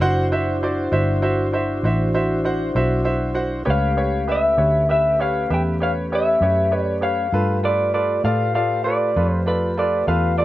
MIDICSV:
0, 0, Header, 1, 5, 480
1, 0, Start_track
1, 0, Tempo, 609756
1, 9, Time_signature, 12, 3, 24, 8
1, 8225, End_track
2, 0, Start_track
2, 0, Title_t, "Clean electric guitar"
2, 0, Program_c, 0, 27
2, 2915, Note_on_c, 0, 77, 89
2, 3395, Note_off_c, 0, 77, 0
2, 3399, Note_on_c, 0, 76, 80
2, 3833, Note_off_c, 0, 76, 0
2, 3866, Note_on_c, 0, 76, 74
2, 4103, Note_off_c, 0, 76, 0
2, 4106, Note_on_c, 0, 77, 71
2, 4322, Note_off_c, 0, 77, 0
2, 4361, Note_on_c, 0, 79, 79
2, 4422, Note_off_c, 0, 79, 0
2, 4590, Note_on_c, 0, 77, 81
2, 4652, Note_off_c, 0, 77, 0
2, 4842, Note_on_c, 0, 76, 78
2, 5361, Note_off_c, 0, 76, 0
2, 5361, Note_on_c, 0, 74, 78
2, 5532, Note_off_c, 0, 74, 0
2, 5535, Note_on_c, 0, 77, 80
2, 5982, Note_off_c, 0, 77, 0
2, 6023, Note_on_c, 0, 74, 76
2, 6244, Note_off_c, 0, 74, 0
2, 6253, Note_on_c, 0, 74, 75
2, 6488, Note_off_c, 0, 74, 0
2, 6492, Note_on_c, 0, 77, 87
2, 6723, Note_off_c, 0, 77, 0
2, 6733, Note_on_c, 0, 77, 78
2, 6955, Note_off_c, 0, 77, 0
2, 6961, Note_on_c, 0, 74, 72
2, 7347, Note_off_c, 0, 74, 0
2, 7347, Note_on_c, 0, 72, 72
2, 7460, Note_off_c, 0, 72, 0
2, 7460, Note_on_c, 0, 71, 75
2, 7679, Note_off_c, 0, 71, 0
2, 7707, Note_on_c, 0, 74, 75
2, 7933, Note_off_c, 0, 74, 0
2, 7936, Note_on_c, 0, 77, 91
2, 8171, Note_off_c, 0, 77, 0
2, 8174, Note_on_c, 0, 74, 75
2, 8225, Note_off_c, 0, 74, 0
2, 8225, End_track
3, 0, Start_track
3, 0, Title_t, "Upright piano"
3, 0, Program_c, 1, 0
3, 9, Note_on_c, 1, 66, 69
3, 11, Note_on_c, 1, 72, 65
3, 14, Note_on_c, 1, 78, 79
3, 189, Note_off_c, 1, 66, 0
3, 191, Note_off_c, 1, 72, 0
3, 192, Note_off_c, 1, 78, 0
3, 252, Note_on_c, 1, 66, 57
3, 253, Note_on_c, 1, 72, 53
3, 257, Note_on_c, 1, 76, 64
3, 431, Note_off_c, 1, 66, 0
3, 431, Note_off_c, 1, 72, 0
3, 433, Note_off_c, 1, 76, 0
3, 495, Note_on_c, 1, 66, 58
3, 495, Note_on_c, 1, 72, 52
3, 502, Note_on_c, 1, 74, 63
3, 673, Note_off_c, 1, 66, 0
3, 673, Note_off_c, 1, 72, 0
3, 676, Note_off_c, 1, 74, 0
3, 723, Note_on_c, 1, 66, 56
3, 729, Note_on_c, 1, 72, 51
3, 729, Note_on_c, 1, 76, 65
3, 907, Note_off_c, 1, 66, 0
3, 910, Note_off_c, 1, 72, 0
3, 910, Note_off_c, 1, 76, 0
3, 962, Note_on_c, 1, 66, 59
3, 966, Note_on_c, 1, 72, 53
3, 968, Note_on_c, 1, 76, 61
3, 1146, Note_off_c, 1, 66, 0
3, 1148, Note_off_c, 1, 72, 0
3, 1149, Note_off_c, 1, 76, 0
3, 1203, Note_on_c, 1, 66, 53
3, 1208, Note_on_c, 1, 72, 49
3, 1212, Note_on_c, 1, 76, 57
3, 1387, Note_off_c, 1, 66, 0
3, 1389, Note_off_c, 1, 72, 0
3, 1391, Note_off_c, 1, 76, 0
3, 1449, Note_on_c, 1, 66, 54
3, 1455, Note_on_c, 1, 72, 50
3, 1460, Note_on_c, 1, 76, 55
3, 1630, Note_off_c, 1, 66, 0
3, 1632, Note_off_c, 1, 72, 0
3, 1635, Note_off_c, 1, 76, 0
3, 1688, Note_on_c, 1, 66, 51
3, 1688, Note_on_c, 1, 72, 50
3, 1691, Note_on_c, 1, 76, 63
3, 1869, Note_off_c, 1, 66, 0
3, 1870, Note_off_c, 1, 72, 0
3, 1871, Note_off_c, 1, 76, 0
3, 1926, Note_on_c, 1, 66, 54
3, 1930, Note_on_c, 1, 72, 54
3, 1933, Note_on_c, 1, 78, 62
3, 2108, Note_off_c, 1, 66, 0
3, 2110, Note_off_c, 1, 72, 0
3, 2112, Note_off_c, 1, 78, 0
3, 2171, Note_on_c, 1, 72, 51
3, 2171, Note_on_c, 1, 76, 59
3, 2172, Note_on_c, 1, 66, 56
3, 2351, Note_off_c, 1, 66, 0
3, 2351, Note_off_c, 1, 72, 0
3, 2351, Note_off_c, 1, 76, 0
3, 2398, Note_on_c, 1, 66, 52
3, 2401, Note_on_c, 1, 76, 59
3, 2403, Note_on_c, 1, 72, 46
3, 2584, Note_off_c, 1, 66, 0
3, 2586, Note_off_c, 1, 76, 0
3, 2587, Note_off_c, 1, 72, 0
3, 2633, Note_on_c, 1, 66, 55
3, 2635, Note_on_c, 1, 72, 48
3, 2638, Note_on_c, 1, 78, 57
3, 2822, Note_off_c, 1, 66, 0
3, 2823, Note_off_c, 1, 72, 0
3, 2824, Note_off_c, 1, 78, 0
3, 2876, Note_on_c, 1, 67, 57
3, 2878, Note_on_c, 1, 73, 57
3, 2879, Note_on_c, 1, 71, 49
3, 3063, Note_off_c, 1, 67, 0
3, 3065, Note_off_c, 1, 71, 0
3, 3065, Note_off_c, 1, 73, 0
3, 3122, Note_on_c, 1, 71, 40
3, 3125, Note_on_c, 1, 67, 44
3, 3131, Note_on_c, 1, 73, 52
3, 3307, Note_off_c, 1, 71, 0
3, 3308, Note_off_c, 1, 67, 0
3, 3311, Note_off_c, 1, 73, 0
3, 3365, Note_on_c, 1, 71, 45
3, 3367, Note_on_c, 1, 67, 47
3, 3375, Note_on_c, 1, 76, 55
3, 3548, Note_off_c, 1, 71, 0
3, 3549, Note_off_c, 1, 67, 0
3, 3553, Note_off_c, 1, 76, 0
3, 3600, Note_on_c, 1, 67, 42
3, 3606, Note_on_c, 1, 71, 43
3, 3607, Note_on_c, 1, 73, 47
3, 3785, Note_off_c, 1, 67, 0
3, 3789, Note_off_c, 1, 71, 0
3, 3789, Note_off_c, 1, 73, 0
3, 3849, Note_on_c, 1, 67, 48
3, 3853, Note_on_c, 1, 71, 40
3, 3854, Note_on_c, 1, 76, 48
3, 4030, Note_off_c, 1, 67, 0
3, 4032, Note_off_c, 1, 71, 0
3, 4032, Note_off_c, 1, 76, 0
3, 4089, Note_on_c, 1, 67, 45
3, 4090, Note_on_c, 1, 71, 43
3, 4096, Note_on_c, 1, 73, 53
3, 4270, Note_off_c, 1, 67, 0
3, 4270, Note_off_c, 1, 71, 0
3, 4274, Note_off_c, 1, 73, 0
3, 4333, Note_on_c, 1, 67, 50
3, 4333, Note_on_c, 1, 71, 43
3, 4333, Note_on_c, 1, 76, 51
3, 4512, Note_off_c, 1, 67, 0
3, 4512, Note_off_c, 1, 71, 0
3, 4512, Note_off_c, 1, 76, 0
3, 4568, Note_on_c, 1, 67, 40
3, 4577, Note_on_c, 1, 71, 41
3, 4579, Note_on_c, 1, 73, 46
3, 4750, Note_off_c, 1, 67, 0
3, 4754, Note_off_c, 1, 71, 0
3, 4755, Note_off_c, 1, 73, 0
3, 4818, Note_on_c, 1, 67, 44
3, 4821, Note_on_c, 1, 71, 43
3, 4823, Note_on_c, 1, 73, 53
3, 4995, Note_off_c, 1, 67, 0
3, 4996, Note_off_c, 1, 71, 0
3, 4997, Note_off_c, 1, 73, 0
3, 5054, Note_on_c, 1, 67, 48
3, 5057, Note_on_c, 1, 71, 45
3, 5062, Note_on_c, 1, 73, 53
3, 5232, Note_off_c, 1, 67, 0
3, 5234, Note_off_c, 1, 71, 0
3, 5236, Note_off_c, 1, 73, 0
3, 5287, Note_on_c, 1, 67, 42
3, 5288, Note_on_c, 1, 71, 42
3, 5290, Note_on_c, 1, 73, 48
3, 5469, Note_off_c, 1, 67, 0
3, 5469, Note_off_c, 1, 71, 0
3, 5470, Note_off_c, 1, 73, 0
3, 5519, Note_on_c, 1, 67, 41
3, 5525, Note_on_c, 1, 71, 40
3, 5526, Note_on_c, 1, 73, 49
3, 5705, Note_off_c, 1, 67, 0
3, 5708, Note_off_c, 1, 71, 0
3, 5708, Note_off_c, 1, 73, 0
3, 5773, Note_on_c, 1, 69, 50
3, 5774, Note_on_c, 1, 65, 54
3, 5776, Note_on_c, 1, 71, 61
3, 5952, Note_off_c, 1, 65, 0
3, 5952, Note_off_c, 1, 69, 0
3, 5953, Note_off_c, 1, 71, 0
3, 6008, Note_on_c, 1, 65, 50
3, 6010, Note_on_c, 1, 69, 46
3, 6016, Note_on_c, 1, 71, 51
3, 6189, Note_off_c, 1, 65, 0
3, 6190, Note_off_c, 1, 69, 0
3, 6193, Note_off_c, 1, 71, 0
3, 6248, Note_on_c, 1, 65, 48
3, 6249, Note_on_c, 1, 69, 42
3, 6249, Note_on_c, 1, 71, 52
3, 6429, Note_off_c, 1, 65, 0
3, 6430, Note_off_c, 1, 69, 0
3, 6430, Note_off_c, 1, 71, 0
3, 6491, Note_on_c, 1, 65, 49
3, 6493, Note_on_c, 1, 69, 41
3, 6498, Note_on_c, 1, 74, 54
3, 6671, Note_off_c, 1, 65, 0
3, 6672, Note_off_c, 1, 69, 0
3, 6674, Note_off_c, 1, 74, 0
3, 6728, Note_on_c, 1, 65, 47
3, 6729, Note_on_c, 1, 69, 44
3, 6734, Note_on_c, 1, 74, 51
3, 6909, Note_off_c, 1, 65, 0
3, 6910, Note_off_c, 1, 69, 0
3, 6912, Note_off_c, 1, 74, 0
3, 6968, Note_on_c, 1, 65, 50
3, 6969, Note_on_c, 1, 69, 42
3, 6972, Note_on_c, 1, 71, 49
3, 7149, Note_off_c, 1, 65, 0
3, 7150, Note_off_c, 1, 69, 0
3, 7151, Note_off_c, 1, 71, 0
3, 7212, Note_on_c, 1, 65, 49
3, 7215, Note_on_c, 1, 69, 42
3, 7216, Note_on_c, 1, 71, 53
3, 7391, Note_off_c, 1, 65, 0
3, 7393, Note_off_c, 1, 69, 0
3, 7393, Note_off_c, 1, 71, 0
3, 7445, Note_on_c, 1, 65, 43
3, 7452, Note_on_c, 1, 69, 43
3, 7454, Note_on_c, 1, 74, 50
3, 7628, Note_off_c, 1, 65, 0
3, 7631, Note_off_c, 1, 69, 0
3, 7632, Note_off_c, 1, 74, 0
3, 7694, Note_on_c, 1, 65, 49
3, 7696, Note_on_c, 1, 69, 46
3, 7699, Note_on_c, 1, 71, 52
3, 7872, Note_off_c, 1, 65, 0
3, 7873, Note_off_c, 1, 69, 0
3, 7875, Note_off_c, 1, 71, 0
3, 7926, Note_on_c, 1, 65, 51
3, 7932, Note_on_c, 1, 69, 47
3, 7936, Note_on_c, 1, 71, 55
3, 8108, Note_off_c, 1, 65, 0
3, 8111, Note_off_c, 1, 69, 0
3, 8113, Note_off_c, 1, 71, 0
3, 8170, Note_on_c, 1, 65, 43
3, 8178, Note_on_c, 1, 69, 42
3, 8179, Note_on_c, 1, 74, 54
3, 8225, Note_off_c, 1, 65, 0
3, 8225, Note_off_c, 1, 69, 0
3, 8225, Note_off_c, 1, 74, 0
3, 8225, End_track
4, 0, Start_track
4, 0, Title_t, "Tonewheel organ"
4, 0, Program_c, 2, 16
4, 3, Note_on_c, 2, 72, 59
4, 6, Note_on_c, 2, 64, 55
4, 7, Note_on_c, 2, 66, 59
4, 9, Note_on_c, 2, 62, 57
4, 2858, Note_off_c, 2, 72, 0
4, 2860, Note_off_c, 2, 64, 0
4, 2860, Note_off_c, 2, 66, 0
4, 2861, Note_off_c, 2, 62, 0
4, 2874, Note_on_c, 2, 61, 55
4, 2876, Note_on_c, 2, 57, 50
4, 2876, Note_on_c, 2, 71, 54
4, 2878, Note_on_c, 2, 67, 56
4, 5734, Note_off_c, 2, 61, 0
4, 5735, Note_off_c, 2, 57, 0
4, 5735, Note_off_c, 2, 71, 0
4, 5736, Note_off_c, 2, 67, 0
4, 5766, Note_on_c, 2, 65, 59
4, 5767, Note_on_c, 2, 67, 57
4, 5767, Note_on_c, 2, 71, 54
4, 5771, Note_on_c, 2, 57, 58
4, 8225, Note_off_c, 2, 57, 0
4, 8225, Note_off_c, 2, 65, 0
4, 8225, Note_off_c, 2, 67, 0
4, 8225, Note_off_c, 2, 71, 0
4, 8225, End_track
5, 0, Start_track
5, 0, Title_t, "Fingered electric bass"
5, 0, Program_c, 3, 33
5, 0, Note_on_c, 3, 30, 78
5, 703, Note_off_c, 3, 30, 0
5, 723, Note_on_c, 3, 31, 75
5, 1425, Note_off_c, 3, 31, 0
5, 1442, Note_on_c, 3, 33, 69
5, 2145, Note_off_c, 3, 33, 0
5, 2165, Note_on_c, 3, 35, 76
5, 2866, Note_off_c, 3, 35, 0
5, 2888, Note_on_c, 3, 37, 69
5, 3588, Note_off_c, 3, 37, 0
5, 3603, Note_on_c, 3, 38, 73
5, 4305, Note_off_c, 3, 38, 0
5, 4332, Note_on_c, 3, 40, 69
5, 5030, Note_off_c, 3, 40, 0
5, 5043, Note_on_c, 3, 42, 73
5, 5745, Note_off_c, 3, 42, 0
5, 5766, Note_on_c, 3, 43, 77
5, 6467, Note_off_c, 3, 43, 0
5, 6486, Note_on_c, 3, 45, 77
5, 7187, Note_off_c, 3, 45, 0
5, 7213, Note_on_c, 3, 41, 71
5, 7910, Note_off_c, 3, 41, 0
5, 7931, Note_on_c, 3, 40, 78
5, 8225, Note_off_c, 3, 40, 0
5, 8225, End_track
0, 0, End_of_file